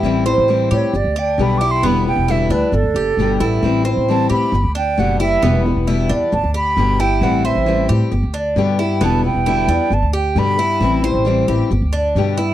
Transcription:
<<
  \new Staff \with { instrumentName = "Flute" } { \time 4/4 \key g \major \tempo 4 = 134 r4. cis''8 d''8 g''8 \tuplet 3/2 { b''8 d'''8 c'''8 } | b''8 g''8 e''8 b'8 a'2 | r4 a''8 b''4 g''8 fis''8 e''8~ | e''8 r4. a''8 b''4 g''8 |
fis''8 e''4 r2 r8 | a''8 g''4. a''8 g''8 b''4~ | b''8 r2. r8 | }
  \new Staff \with { instrumentName = "Cuban tres" } { \time 4/4 \key g \major e'8 c''4 g'4 d'4 e'8 | b4 e'8 d'4 g'4 e'8~ | e'8 c''4 g'4 d'4 e'8 | b4 e'8 d'4 g'4 e'8~ |
e'8 c''4 g'4 d'4 e'8 | b4 e'8 d'4 g'4 e'8~ | e'8 c''4 g'4 d'4 e'8 | }
  \new Staff \with { instrumentName = "Steel-string acoustic guitar" } { \time 4/4 \key g \major <e g c' e'>8 <g c' e'>8 <e g c' e'>8 <g c' e'>8 r4 <b, d g b g'>8 <g b g'>8 | <b, d g b e'>8 <g b e'>8 <b, d g b e'>8 <g b e'>8 r4 <b, d g b g'>8 <g b g'>8 | <e g c' e'>8 <g c' e'>8 <e g c' e'>8 <g c' e'>8 r4 <b, d g b g'>8 <g b g'>8 | <b, d g b e'>8 <g b e'>8 <b, d g b e'>8 <g b e'>8 r4 <b, d g b g'>8 <g b g'>8 |
<e g c' e'>8 <g c' e'>8 <e g c' e'>8 <g c' e'>8 r4 <b, d g b g'>8 <g b g'>8 | <b, d g b e'>8 <g b e'>8 <b, d g b e'>8 <g b e'>8 r4 <b, d g b g'>8 <g b g'>8 | <e g c' e'>8 <g c' e'>8 <e g c' e'>8 <g c' e'>8 r4 <b, d g b g'>8 <g b g'>8 | }
  \new Staff \with { instrumentName = "Upright bass" } { \clef bass \time 4/4 \key g \major a,,8. a,,8. a,16 r16 g,,16 d,8. b,,4 | e,,8. e,,8. d,16 r16 g,,16 d,16 fis,,8 g,,8 a,,8 | a,,8. a,,8. a,16 r16 g,,16 d,8. fis,,4 | e,,8. e,,8. e,16 r16 g,,16 d,8. g,,4 |
a,,8. a,,8. a,16 r16 g,,16 d,8. g,4 | e,,8. e,,8. e,16 r16 g,,16 d,8. g,4 | a,,8. a,,8. a,,16 r16 g,,16 d,8. g,4 | }
>>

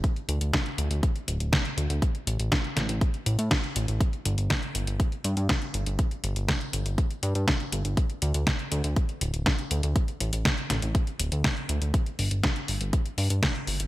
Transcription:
<<
  \new Staff \with { instrumentName = "Analog synth bass" } { \clef bass \time 4/4 \key d \mixolydian \tempo 4 = 121 r8 d,16 d,16 r8 d,16 d,16 r8 d,,16 d,,16 r8 d,16 d,16 | r8 a,,16 a,,16 r8 a,,16 a,,16 r8 a,,16 a,16 r8 a,,16 a,,16 | r8 g,,16 g,,16 r8 g,,16 g,,16 r8 g,16 g,16 r8 g,,16 g,,16 | r8 g,,16 g,,16 r8 g,,16 g,,16 r8 g,16 g,16 r8 g,,16 g,,16 |
r8 d,16 d,16 r8 d,16 d,16 r8 d,,16 d,,16 r8 d,16 d,16 | r8 a,,16 a,,16 r8 a,,16 a,,16 r8 d,,16 d,16 r8 d,16 d,16 | r8 g,,16 g,,16 r8 g,,16 g,,16 r8 g,16 g,16 r8 g,,16 g,,16 | }
  \new DrumStaff \with { instrumentName = "Drums" } \drummode { \time 4/4 <hh bd>16 hh16 hh16 hh16 <hh bd sn>16 hh16 hh16 hh16 <hh bd>16 hh16 hh16 hh16 <hh bd sn>16 hh16 hh16 hh16 | <hh bd>16 hh16 hh16 hh16 <hh bd sn>16 hh16 <hh sn>16 hh16 <hh bd>16 hh16 hh16 hh16 <hh bd sn>16 hh16 hh16 hh16 | <hh bd>16 hh16 hh16 hh16 <hh bd sn>16 hh16 hh16 hh16 <hh bd>16 hh16 hh16 hh16 <hh bd sn>16 hh16 hh16 hh16 | <hh bd>16 hh16 hh16 hh16 <hh bd sn>16 hh16 hh16 hh16 <hh bd>16 hh16 hh16 hh16 <hh bd sn>16 hh16 hh16 hh16 |
<hh bd>16 hh16 hh16 hh16 <hh bd sn>16 hh16 hh16 hh16 <hh bd>16 hh16 hh16 hh16 <hh bd sn>16 hh16 hh16 hh16 | <hh bd>16 hh16 hh16 hh16 <hh bd sn>16 hh16 <hh sn>16 hh16 <hh bd>16 hh16 hh16 hh16 <hh bd sn>16 hh16 hh16 hh16 | <hh bd>16 hh16 hho16 hh16 <hh bd sn>16 hh16 hho16 hh16 <hh bd>16 hh16 hho16 hh16 <hh bd sn>16 hh16 hho16 hh16 | }
>>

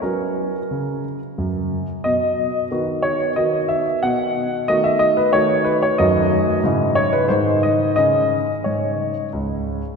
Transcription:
<<
  \new Staff \with { instrumentName = "Grand piano" } { \time 3/4 \key b \major \tempo 4 = 90 ais'2~ ais'8 r8 | dis''4. cis''8 dis''8 e''8 | fis''4 dis''16 e''16 dis''16 b'16 cis''8 b'16 cis''16 | \key cis \minor dis''4. cis''16 b'16 bis'8 dis''8 |
dis''4 cis''4 r4 | }
  \new Staff \with { instrumentName = "Grand piano" } { \clef bass \time 3/4 \key b \major <fis cis' fis'>4 cis4 fis,4 | b,4 <dis b fis'>4 <dis b fis'>4 | b,4 <dis a fis'>4 <dis a fis'>4 | \key cis \minor <fis, dis a fis'>4 <gis, cis gis e'>4 <gis, dis gis dis'>4 |
<cis gis cis'>4 gis,4 cis,4 | }
>>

